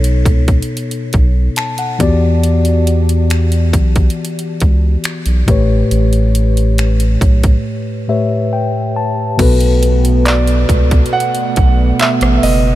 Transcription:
Already playing: analog synth bass B1, tine electric piano B2 B3 D#4 A4 C#5
0.04 closed hi-hat
0.25 analog synth bass C#2, kick, closed hi-hat
0.48 kick, closed hi-hat
0.62 closed hi-hat
0.77 closed hi-hat
0.91 closed hi-hat
1.13 analog synth bass B1, kick, closed hi-hat
1.56 tine electric piano A5, finger snap, closed hi-hat
1.78 tine electric piano F#5, closed hi-hat
1.99 analog synth bass E2, tine electric piano E3 B3 F#4 G4 D5, kick, closed hi-hat
2.03 tine electric piano D5
2.44 closed hi-hat
2.65 closed hi-hat
2.87 closed hi-hat
3.09 closed hi-hat
3.30 finger snap, closed hi-hat
3.52 closed hi-hat
3.73 analog synth bass B1, kick, closed hi-hat
3.96 kick, closed hi-hat
4.10 closed hi-hat
4.25 closed hi-hat
4.39 closed hi-hat
4.60 analog synth bass C#2, kick, closed hi-hat
5.04 finger snap, closed hi-hat
5.26 analog synth bass B1, closed hi-hat
5.46 analog synth bass A1, tine electric piano A2 A3 G4 B4, kick, closed hi-hat
5.51 tine electric piano C#5
5.91 analog synth bass A1, closed hi-hat
6.13 closed hi-hat
6.35 closed hi-hat
6.57 closed hi-hat
6.78 finger snap, closed hi-hat
7.00 closed hi-hat
7.21 analog synth bass B1, kick, closed hi-hat
7.43 kick, closed hi-hat
8.08 tine electric piano A2 A3 G4 B4 C#5 E5
8.53 tine electric piano G5
8.96 tine electric piano A5
9.38 analog synth bass B1, tine electric piano B2 B3 F#4 A4, analog synth pad B2 A3 B3, kick, closed hi-hat, crash
9.42 tine electric piano B4
9.60 closed hi-hat
9.83 closed hi-hat
10.05 closed hi-hat
10.26 grand piano D5, clap, closed hi-hat
10.47 closed hi-hat
10.69 analog synth bass C#2, kick, closed hi-hat
10.91 kick, closed hi-hat
11.06 closed hi-hat
11.13 grand piano F#5
11.20 closed hi-hat
11.35 closed hi-hat
11.56 analog synth bass B1, kick, closed hi-hat
11.99 grand piano E5, clap, closed hi-hat
12.21 analog synth bass A1, cross-stick, closed hi-hat
12.36 grand piano E5
12.43 analog synth bass F#1, grand piano D#5, open hi-hat

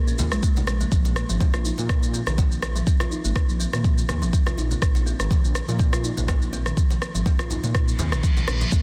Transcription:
Already playing: detuned saw bass A#2
0.07 kalimba C#4, shaker
0.18 detuned saw bass D#2, kalimba F4, high conga, low conga, shaker
0.32 detuned saw bass A#1, kalimba G#3, cross-stick, muted conga, shaker
0.43 kalimba A#3, kick, shaker
0.57 high conga, shaker
0.67 detuned saw bass A#1, cross-stick, muted conga, shaker
0.81 kalimba A#3, high conga, shaker
0.92 detuned saw bass A#1, kalimba F3, kick, shaker
1.05 muted conga, shaker
1.16 cross-stick, shaker
1.29 detuned saw bass G#1, kalimba F3, shaker
1.40 kalimba C4, kick, muted conga, high conga, shaker
1.54 detuned saw bass A#1, kalimba F4, cross-stick, shaker
1.65 kalimba D#4, shaker
1.78 detuned saw bass A#2, kalimba A#3, muted conga, shaker
1.89 kick, cross-stick, high conga, shaker
2.03 shaker
2.14 kalimba C4, shaker
2.26 detuned saw bass A#1, kalimba D#3, cross-stick, muted conga, high conga, shaker
2.38 kalimba F3, kick, high conga, low conga, shaker
2.52 shaker
2.62 cross-stick, muted conga, shaker
2.76 kalimba F3, shaker
2.87 kalimba C4, kick, shaker
3.00 kalimba F4, cross-stick, muted conga, high conga, shaker
3.11 kalimba D#4, shaker
3.24 detuned saw bass G#1, kalimba A#3, shaker
3.36 kick, cross-stick, muted conga, high conga, shaker
3.49 detuned saw bass A#1, shaker
3.60 kalimba C4, shaker
3.73 detuned saw bass A#2, kalimba D#3, cross-stick, muted conga, shaker
3.84 kalimba F3, kick, shaker
3.98 shaker
4.09 detuned saw bass D#2, cross-stick, high conga, low conga, shaker
4.22 detuned saw bass A#1, kalimba F3, muted conga, shaker
4.33 kalimba C4, kick, shaker
4.46 kalimba F4, cross-stick, high conga, shaker
4.57 detuned saw bass A#1, kalimba D#4, muted conga, shaker
4.71 kalimba A#3, high conga, shaker
4.82 detuned saw bass A#1, kick, cross-stick, shaker
4.95 muted conga, shaker
5.06 kalimba C4, shaker
5.20 detuned saw bass G#1, kalimba D#3, cross-stick, shaker
5.31 kalimba F3, kick, muted conga, high conga, shaker
5.44 detuned saw bass A#1, shaker
5.55 cross-stick, shaker
5.68 detuned saw bass A#2, kalimba F3, muted conga, shaker
5.79 kalimba C4, kick, high conga, shaker
5.93 kalimba F4, cross-stick, shaker
6.04 kalimba D#4, shaker
6.17 detuned saw bass A#1, kalimba A#3, muted conga, high conga, shaker
6.28 kick, cross-stick, high conga, low conga, shaker
6.42 shaker
6.53 kalimba C4, muted conga, shaker
6.66 kalimba D#3, cross-stick, shaker
6.77 kalimba F3, kick, shaker
6.90 muted conga, high conga, shaker
7.02 cross-stick, shaker
7.15 detuned saw bass G#1, kalimba F3, shaker
7.26 kalimba C4, kick, muted conga, high conga, shaker
7.39 detuned saw bass A#1, kalimba F4, cross-stick, shaker
7.50 kalimba D#4, low conga, shaker
7.64 detuned saw bass A#2, kalimba A#3, muted conga, shaker
7.75 kick, cross-stick, reverse cymbal, shaker
7.88 shaker
7.99 detuned saw bass D#2, kalimba C4, high conga, low conga, shaker
8.12 detuned saw bass A#1, kalimba D#3, cross-stick, muted conga, shaker
8.23 kalimba F3, kick, shaker
8.37 high conga, shaker
8.48 detuned saw bass A#1, cross-stick, muted conga, shaker
8.61 kalimba F3, high conga, shaker
8.72 detuned saw bass A#1, kalimba A#3, kick, shaker

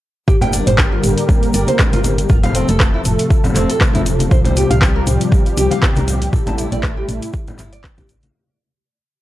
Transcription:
0.28 fm bass G1, analog synth pad D3 G3 A#3 G4 A#4, nylon-string guitar G4, kick, mid tom, shaker
0.41 nylon-string guitar G5, closed hi-hat, low conga, shaker
0.53 nylon-string guitar D4, open hi-hat, shaker
0.67 fm bass G1, nylon-string guitar C5, closed hi-hat, mid tom, shaker
0.78 kick, cross-stick, clap, shaker
0.92 nylon-string guitar F4
1.04 fm bass G1, mid tom, open hi-hat, shaker
1.18 closed hi-hat, shaker
1.29 kick, low conga, shaker
1.43 closed hi-hat, shaker
1.54 fm bass G1, nylon-string guitar D4, open hi-hat, shaker
1.67 nylon-string guitar C5, closed hi-hat, high conga, shaker
1.79 kick, cross-stick, clap, low conga, shaker
1.93 fm bass G1, nylon-string guitar F4, closed hi-hat, high conga, shaker
2.04 open hi-hat, low conga, shaker
2.18 closed hi-hat, shaker
2.29 fm bass F1, analog synth pad C3 F3 A3 A4, nylon-string guitar F4, kick, mid tom, shaker
2.43 nylon-string guitar F5, closed hi-hat, low conga, shaker
2.55 nylon-string guitar C4, open hi-hat, shaker
2.68 fm bass F1, nylon-string guitar A4, closed hi-hat, shaker
2.80 kick, cross-stick, clap, shaker
2.94 nylon-string guitar E4
3.05 fm bass F1, mid tom, open hi-hat, shaker
3.19 closed hi-hat, shaker
3.30 kick, shaker
3.44 closed hi-hat, low conga, shaker
3.55 fm bass F1, nylon-string guitar C4, clap, open hi-hat, high conga, shaker
3.70 nylon-string guitar A4, closed hi-hat, shaker
3.80 kick, cross-stick, clap, high conga, shaker
3.94 fm bass F1, nylon-string guitar E4, closed hi-hat, high conga, low conga, shaker
4.06 open hi-hat, shaker
4.19 closed hi-hat, high conga, shaker
4.31 fm bass C2, analog synth pad G3 G4, nylon-string guitar C5, kick, mid tom, shaker
4.45 nylon-string guitar C5, closed hi-hat, low conga, shaker
4.56 nylon-string guitar G4, open hi-hat, shaker
4.70 fm bass C2, nylon-string guitar F5, closed hi-hat, mid tom, shaker
4.82 kick, cross-stick, clap, shaker
4.96 nylon-string guitar A#4
5.07 fm bass C2, mid tom, open hi-hat, shaker
5.21 closed hi-hat, shaker
5.32 kick, low conga, shaker
5.46 closed hi-hat, shaker
5.57 fm bass C2, nylon-string guitar G4, open hi-hat, shaker
5.71 nylon-string guitar F5, closed hi-hat, high conga, shaker
5.82 kick, cross-stick, clap, low conga, shaker
5.96 fm bass C2, nylon-string guitar A#4, closed hi-hat, high conga, shaker
6.08 open hi-hat, low conga, shaker
6.22 closed hi-hat, shaker
6.33 fm bass A1, analog synth pad A3 E4, nylon-string guitar A4, kick, mid tom, shaker
6.46 nylon-string guitar A5, closed hi-hat, high conga, low conga, shaker
6.58 nylon-string guitar E4, open hi-hat, shaker
6.72 fm bass A1, nylon-string guitar D5, closed hi-hat, mid tom, high conga, shaker
6.83 kick, cross-stick, clap, shaker
6.97 nylon-string guitar G4
7.09 fm bass A1, mid tom, open hi-hat, shaker
7.22 closed hi-hat, shaker
7.33 kick, shaker
7.47 closed hi-hat, low conga, shaker
7.59 fm bass G1, nylon-string guitar E4, clap, open hi-hat, high conga, shaker
7.73 nylon-string guitar D5, closed hi-hat, shaker
7.84 kick, cross-stick, clap, high conga, shaker
7.98 fm bass A1, nylon-string guitar G4, kick, closed hi-hat, high conga, low conga, shaker
8.09 open hi-hat, shaker
8.23 closed hi-hat, high conga, shaker

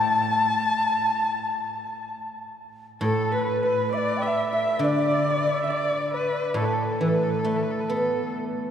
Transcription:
Already playing: guzheng A2, hammered dulcimer D5 E5 G5 A5, xiao A5, erhu A5
3.01 guzheng A2, erhu A4, xiao A4, hammered dulcimer A4
3.32 hammered dulcimer B4, erhu B4, xiao B4
3.62 erhu B4, hammered dulcimer B4, xiao B4
3.92 erhu D5, hammered dulcimer D5, xiao E5
3.97 xiao D5
4.17 xiao G5
4.22 erhu E5, hammered dulcimer E5, xiao G5
4.27 xiao E5
4.50 erhu E5, xiao E5, hammered dulcimer E5
4.79 guzheng D3, erhu D5, xiao D5 E5
4.84 hammered dulcimer D5
4.92 hammered dulcimer D5
4.98 hammered dulcimer D5
5.06 hammered dulcimer D5
5.11 hammered dulcimer D5
5.20 hammered dulcimer D5
5.30 hammered dulcimer D5
5.37 hammered dulcimer D5
5.47 hammered dulcimer E5
5.61 xiao E5, erhu E5, hammered dulcimer E5
5.68 erhu D5, hammered dulcimer D5, xiao E5
5.73 xiao D5
6.13 erhu B4, xiao B4
6.54 guzheng A2, hammered dulcimer A4, erhu A4, xiao B4
6.61 xiao A4, erhu B4
6.73 erhu A4
6.83 erhu B4
6.92 erhu A4
7.01 guzheng E3, erhu B4
7.08 erhu A4
7.14 erhu B4
7.23 erhu A4
7.30 erhu B4
7.39 erhu A4
7.44 guzheng A3, erhu B4
7.56 erhu A4
7.63 erhu B4
7.71 erhu A4
7.80 erhu B4
7.88 guzheng B3, erhu A4

